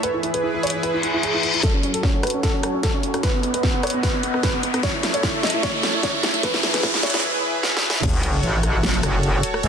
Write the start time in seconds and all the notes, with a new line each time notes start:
0.03 E3 E4 G#4 B4, closed hi-hat
0.14 E4
0.23 E4, closed hi-hat
0.34 B4, closed hi-hat
0.43 E4
0.54 E4
0.63 C#5, closed hi-hat
0.67 closed hi-hat
0.70 E4, closed hi-hat
0.83 B4, closed hi-hat, reverse cymbal
0.94 E4
1.03 E4, closed hi-hat
1.14 E4
1.23 G#4, closed hi-hat
1.34 E4
1.43 E4, closed hi-hat
1.54 E4, closed hi-hat
1.63 F#3 F#4 A4 C#5, kick, snare, closed hi-hat, riser
1.74 C#4
1.83 C#4, closed hi-hat
1.94 A4, closed hi-hat
2.03 C#4, kick, snare
2.14 C#4
2.23 B4, cross-stick, closed hi-hat
2.27 closed hi-hat
2.30 C#4, closed hi-hat
2.43 A4, kick, snare, closed hi-hat
2.54 C#4
2.63 C#4, cross-stick, closed hi-hat
2.74 C#4
2.83 A4, kick, snare, closed hi-hat
2.94 C#4
3.03 C#4, closed hi-hat
3.14 C#4, cross-stick, closed hi-hat
3.23 B3 B4 D#5 F#5, kick, snare, closed hi-hat
3.34 B3
3.43 B3, closed hi-hat
3.54 B4, closed hi-hat
3.63 B3, kick, snare
3.74 B3
3.83 C#5, cross-stick, closed hi-hat
3.87 closed hi-hat
3.90 B3, closed hi-hat
4.03 B4, kick, snare, closed hi-hat
4.14 B3
4.23 B3, closed hi-hat
4.34 B3, cross-stick
4.43 B4, kick, snare, closed hi-hat
4.54 B3
4.63 B3, closed hi-hat
4.74 B3, cross-stick, closed hi-hat
4.83 A3 A4 C#5 E5, kick, snare, closed hi-hat
4.94 E4
5.03 E4, snare, closed hi-hat
5.14 C#5, closed hi-hat
5.23 E4, kick, snare
5.34 E4
5.43 D#5, snare, closed hi-hat
5.47 closed hi-hat
5.50 E4, closed hi-hat
5.63 C#5, kick, snare, closed hi-hat
5.74 E4
5.83 E4, snare, closed hi-hat
5.94 E4
6.03 C#5, kick, snare, closed hi-hat
6.14 E4
6.23 E4, snare, closed hi-hat
6.34 E4, closed hi-hat
6.43 E3 E4 G#4 B4, kick, snare, closed hi-hat
6.54 E4, snare
6.63 E4, snare, closed hi-hat
6.74 B4, snare, closed hi-hat
6.83 E4, kick, snare
6.94 E4, snare
7.03 C#5, snare, closed hi-hat
7.07 closed hi-hat
7.10 E4, snare, closed hi-hat
7.63 snare
7.77 snare
7.90 snare
8.03 F#1 F#4 A4 C#5, kick, crash, ride, sub drop
8.23 closed hi-hat
8.43 A1, ride
8.63 cross-stick, closed hi-hat
8.83 snare, ride
8.94 closed hi-hat
9.03 F#1, cross-stick, closed hi-hat
9.23 ride
9.43 closed hi-hat
9.54 cross-stick
9.63 C#2, ride